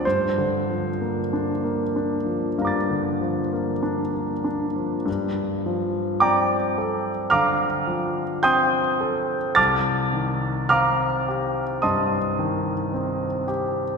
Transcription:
<<
  \new Staff \with { instrumentName = "Grand piano" } { \time 4/4 \key g \minor \tempo 4 = 52 << { c''2.~ c''8 r8 | r4 <d'' g'' bes'' d'''>4 <f'' bes'' d''' f'''>4 <g'' c''' ees''' g'''>4 | <a'' d''' f''' a'''>4 <f'' bes'' d''' f'''>4 <ees'' a'' c''' ees'''>4. r8 | } \\ { r2 <f'' bes'' d''' a'''>2 | r1 | r1 | } >> }
  \new Staff \with { instrumentName = "Grand piano" } { \clef bass \time 4/4 \key g \minor g,16 d16 f16 bes16 d'16 bes16 d'16 f16 g,16 d16 f16 bes16 d'16 bes16 d'16 f16 | g,8 f8 c'8 a'8 d8 f8 c'8 a'8 | c,8 ees8 c'8 g'8 g,8 ees8 c'8 g'8 | }
>>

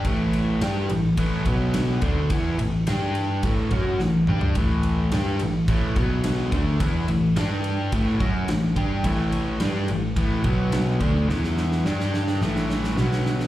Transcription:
<<
  \new Staff \with { instrumentName = "Overdriven electric guitar" } { \clef bass \time 4/4 \key b \minor \tempo 4 = 107 <a, e a>4 <g d' g'>8 <a, e>8 <a, e a>8 <b, fis b>4 <d a d'>8 | <e b e'>8 <a, e>8 <g d' g'>4 <a, e a>8 <fis cis' fis'>8 <a, e>8 <g d' g'>8 | <a, e a>4 <g d' g'>8 <a, e>8 <a, e a>8 <b, fis b>4 <d a d'>8 | <e b e'>8 <a, e>8 <g d' g'>4 <a, e a>8 <fis cis' fis'>8 <a, e>8 <g d' g'>8 |
<a, e a>4 <g d' g'>8 <a, e>8 <a, e a>8 <b, fis b>4 <d a d'>8 | <e b e'>4 <g d' g'>4 <a, e a>4 <b, fis b>4 | }
  \new Staff \with { instrumentName = "Picked electric bass" } { \clef bass \time 4/4 \key b \minor a,,4 g,8 a,,8 a,,8 b,,4 d,8 | e,8 a,,8 g,4 a,,8 fis,8 a,,8 g,8 | a,,4 g,8 a,,8 a,,8 b,,4 d,8 | e,8 a,,8 g,4 a,,8 fis,8 a,,8 g,8 |
a,,4 g,8 a,,8 a,,8 b,,4 d,8 | e,4 g,4 a,,4 b,,4 | }
  \new DrumStaff \with { instrumentName = "Drums" } \drummode { \time 4/4 <bd cymr>8 cymr8 <cymr sn>8 cymr8 <bd cymr>8 <bd cymr>8 <cymr sn>8 <bd cymr>8 | <bd cymr>8 cymr8 <cymr sn>8 cymr8 <bd cymr>8 <bd cymr>8 sn8 toml16 tomfh16 | <bd cymr>8 cymr8 <cymr sn>8 cymr8 <bd cymr>8 <bd cymr>8 <cymr sn>8 <bd cymr>8 | <bd cymr>8 cymr8 <cymr sn>8 cymr8 <bd cymr>8 <bd cymr>8 <cymr sn>8 <bd cymr>8 |
<bd cymr>8 cymr8 <cymr sn>8 cymr8 <bd cymr>8 <bd cymr>8 <cymr sn>8 <bd cymr>8 | sn16 sn16 sn16 sn16 sn16 sn16 sn16 sn16 sn16 sn16 sn16 sn16 sn16 sn16 sn16 sn16 | }
>>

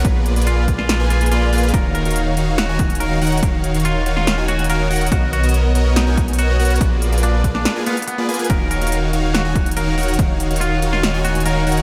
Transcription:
<<
  \new Staff \with { instrumentName = "Analog polysynth" } { \time 4/4 \key ees \minor \tempo 4 = 142 <bes f' aes'>8. <bes f' aes' ces'' d''>8. <bes f' aes' ces'' d''>8. <bes f' aes' ces'' aes''>8. <bes f' aes' ces'' d''>8 <bes f' aes' ces'' f''>8 | <ees ees' ges' des'' f''>8. <ees ees' ges' des'' f''>8. <ees ees' ges' des'' f''>8. <ees ees' ges' des'' aes''>8. <ees ees' ges' des'' f''>8 <ees ees' ges' des'' ges''>8 | <ees ees' ges' des'' f''>8. <ees ees' ges' des'' f''>8. <ees ees' ges' des'' f''>8. <ees ees' ges' des'' aes''>8. <ees ees' ges' des'' f''>8 <ees ees' ges' des'' ges''>8 | <b fis' ais' dis''>8. <b fis' ais' des'' dis''>8. <b fis' ais' des'' dis''>8. <b fis' ais' des'' aes''>8. <b fis' ais' des'' dis''>8 <b fis' ais' des'' fis''>8 |
<bes f' ces''>8. <bes f' aes' ces'' d''>8. <bes f' aes' ces'' d''>8. <bes f' aes' ces'' aes''>16 <bes f' aes' ces'' f''>16 r8 <bes f' aes' ces'' d''>16 <bes f' aes' ces'' aes''>8 | <ees ees' f''>8. <ees ees' ges' des'' f''>8. <ees ees' ges' des'' f''>8. <ees ees' ges' des'' aes''>8. <ees ees' ges' des'' f''>8 <ees ees' ges' des'' ges''>8 | <ees ees' ges' des'' f''>8. <ees ees' ges' des'' f''>8. <ees ees' ges' des'' f''>8. <ees ees' ges' des'' aes''>8. <ees ees' ges' des'' f''>8 <ees ees' ges' des'' ges''>8 | }
  \new Staff \with { instrumentName = "Clean electric guitar" } { \time 4/4 \key ees \minor r4 f'8 r16 f'8 r16 f'8 f'8. r16 | bes'8 bes'8 r4 ges'8. r16 bes'8. r16 | r4 f'8 r16 f'8 r16 ges'8 bes'8. r16 | fis'8 fis'8 r4 dis'8. r16 fis'8. r16 |
r4 d'8 r16 d'8 r16 ces'8 ces'8. r16 | bes'8 bes'8 r4 ges'8. r16 bes'8. r16 | r4 f'8 r16 f'8 r16 ges'8 bes'8. r16 | }
  \new Staff \with { instrumentName = "Sub bass" } { \clef bass \time 4/4 \key ees \minor bes,,1 | ees,,1~ | ees,,1 | b,,1 |
bes,,2 r2 | ees,,1~ | ees,,1 | }
  \new DrumStaff \with { instrumentName = "Drums" } \drummode { \time 4/4 <hh bd>8 hh16 hh32 hh32 hh8 <hh bd>16 sn16 <hh sn>8 hh16 hh32 hh32 hh8 hho32 hh32 hh32 hh32 | <hh bd>8 hh16 hh32 hh32 hh8 hh8 <hh sn>8 <hh bd>16 hh32 hh32 hh8 hho32 hh32 hh32 hh32 | <hh bd>8 hh16 hh32 hh32 hh8 hh16 sn16 <hh sn>8 hh16 hh32 hh32 hh8 hho32 hh32 hh32 hh32 | <hh bd>8 hh16 hh32 hh32 hh8 hh8 <hh sn>8 <hh bd>16 hh32 hh32 hh8 hho32 hh32 hh32 hh32 |
<hh bd>8 hh16 hh32 hh32 hh8 <hh bd>16 sn16 <hh sn>8 hh16 hh32 hh32 hh8 hho32 hh32 hh32 hh32 | <hh bd>8 hh16 hh32 hh32 hh8 hh8 <hh sn>8 <hh bd>16 hh32 hh32 hh8 hho32 hh32 hh32 hh32 | <hh bd>8 hh16 hh32 hh32 hh8 hh16 sn16 <hh sn>8 hh16 hh32 hh32 hh8 hho32 hh32 hh16 | }
>>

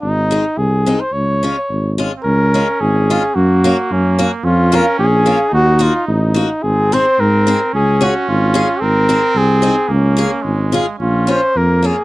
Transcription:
<<
  \new Staff \with { instrumentName = "Flugelhorn" } { \time 2/4 \key des \major \tempo 4 = 110 ees'4 aes'8. c''16 | des''4. r8 | bes'4 aes'4 | ges'4 des'8. r16 |
f'8 bes'8 aes'4 | ges'8 f'8 ees'4 | aes'8 c''8 bes'4 | aes'8 ges'8 f'4 |
bes'4 aes'4 | des'4. r8 | \key bes \minor f'8 c''8 bes'8 aes'8 | }
  \new Staff \with { instrumentName = "Steel-string acoustic guitar" } { \time 2/4 \key des \major r8 <aes c' ees'>8 r8 <aes c' ees'>8 | r8 <aes des' f'>8 r8 <aes des' f'>8 | r8 <aes des' f'>8 r8 <aes des' f'>8 | r8 <bes des' ges'>8 r8 <bes des' ges'>8 |
r8 <bes des' f'>8 r8 <bes des' f'>8 | r8 <bes ees' ges'>8 r8 <bes ees' ges'>8 | r8 <c' ees' aes'>8 r8 <c' ees' aes'>8 | r8 <des' f' aes'>8 r8 <des' f' aes'>8 |
r8 <c' ees' aes'>8 r8 <c' ees' aes'>8 | r8 <des' f' aes'>8 r8 <des' f' aes'>8 | \key bes \minor r8 <bes des' f'>8 r8 <bes des' f'>8 | }
  \new Staff \with { instrumentName = "Trumpet" } { \time 2/4 \key des \major r2 | r4. r16. c'32 | des'2 | bes2 |
des'2 | ees'4. r8 | c'2 | des'2 |
c'2 | bes4 aes4 | \key bes \minor des'4 bes4 | }
  \new Staff \with { instrumentName = "Tuba" } { \clef bass \time 2/4 \key des \major aes,,4 c,4 | des,4 aes,,4 | des,4 aes,,4 | ges,4 ges,4 |
f,4 bes,,4 | ees,4 a,,4 | aes,,4 aes,4 | des,4 aes,,4 |
aes,,4 c,4 | des,4 aes,,4 | \key bes \minor bes,,4 f,4 | }
>>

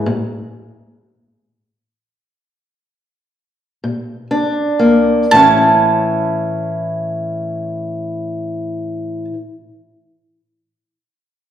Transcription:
<<
  \new Staff \with { instrumentName = "Mandolin" } { \time 12/8 \key a \major \tempo 4. = 39 r1. | a''1. | }
  \new Staff \with { instrumentName = "Steel-string acoustic guitar" } { \clef bass \time 12/8 \key a \major << { r1 r4 d'8 bes8 | <e cis' e'>1. | } \\ { a,4 r2. r8 bes,4 r8 | a,1. | } >> }
>>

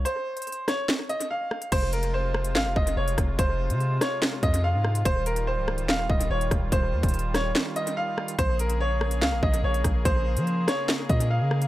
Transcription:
<<
  \new Staff \with { instrumentName = "Grand piano" } { \time 4/4 \key f \minor \tempo 4 = 144 c''4. des''8 r8 ees''8 f''4 | c''8 bes'8 c''4 f''8 ees''8 des''8 r8 | c''4. des''8 r8 ees''8 f''4 | c''8 bes'8 c''4 f''8 ees''8 des''8 r8 |
c''4. des''8 r8 ees''8 f''4 | c''8 bes'8 des''4 f''8 ees''8 des''8 r8 | c''4. des''8 r8 ees''8 f''4 | }
  \new Staff \with { instrumentName = "Pipe organ" } { \time 4/4 \key f \minor r1 | f'1~ | f'1~ | f'1~ |
f'1 | aes'1~ | aes'1 | }
  \new Staff \with { instrumentName = "Pipe organ" } { \clef bass \time 4/4 \key f \minor r1 | <c aes>1~ | <c aes>1 | <ees g>1~ |
<ees g>1 | <des bes>1~ | <des bes>1 | }
  \new Staff \with { instrumentName = "808-style bass" } { \clef bass \time 4/4 \key f \minor r1 | f,,2 aes,,16 f,,16 f,,8 f,,8 f,,8 | f,,8. c8. r4 f,8. aes,8. | ees,,4~ ees,,16 des,,8~ des,,32 ees,,8~ ees,,32 ees,,8 ees,,8 ees,,8 |
ees,,8 ees,16 ees,,4~ ees,,16 r2 | bes,,2 des,16 bes,,16 bes,,8 bes,,8 bes,,8 | bes,,8. f8. r4 bes,8. des8. | }
  \new DrumStaff \with { instrumentName = "Drums" } \drummode { \time 4/4 hh8. hh32 hh32 hh32 hh16. <hh ss sn>8 <hc sn>8 hh16 hh16 r8 ss16 hh16 | <cymc hh bd>8 hh16 hh16 r8 ss16 hh16 <hc sn>8 bd16 hh16 r16 hh16 <hh bd ss>8 | <hh bd>8. hh16 hh8 <hh ss sn>8 <hc sn>8 <hh bd>16 hh16 r8 ss16 hh16 | <hh bd>8 hh16 hh16 r8 ss16 hh16 <hc sn>8 bd16 hh16 r16 hh16 <hh bd ss>8 |
<hh bd>8. <hh bd>32 hh32 hh32 hh16. <hh ss sn>8 <hc sn>8 hh16 hh16 r8 ss16 hh16 | <hh bd>8 hh16 hh16 r8 ss16 hh16 <hc sn>8 bd16 hh16 r16 hh16 <hh bd ss>8 | <hh bd>8. hh16 hh8 <hh ss sn>8 <hc sn>8 <hh bd>16 hh16 r8 ss16 hh16 | }
>>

